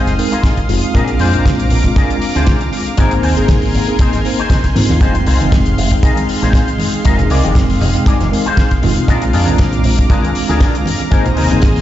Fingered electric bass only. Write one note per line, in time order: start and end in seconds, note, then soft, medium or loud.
0.07 0.16 F1 medium
0.69 0.80 F1 loud
0.95 1.15 A#1 loud
1.20 1.31 F2 medium
1.34 1.67 A#1 medium
1.71 1.82 A#1 loud
2.36 2.45 D2 medium
2.98 3.19 G#1 loud
3.24 3.35 D#2 medium
3.37 3.71 G#1 medium
3.74 3.85 G#1 medium
4.14 4.23 G#1 medium
4.76 4.87 G#2 medium
4.90 4.99 D#2 loud
5.01 5.22 F1 loud
5.27 5.38 C2 medium
5.41 5.74 F1 medium
5.78 5.89 F1 loud
6.42 6.52 A#1 medium
7.06 7.26 F1 loud
7.31 7.41 C2 medium
7.44 7.77 F1 medium
7.81 7.92 F1 medium
8.21 8.30 F1 medium
8.83 8.94 F1 loud
9.08 9.29 A#1 loud
9.34 9.45 F2 medium
9.48 9.81 A#1 medium
9.85 9.96 A#1 loud
10.49 10.58 D2 medium
11.12 11.32 G#1 loud
11.37 11.48 D#2 medium
11.51 11.81 G#1 medium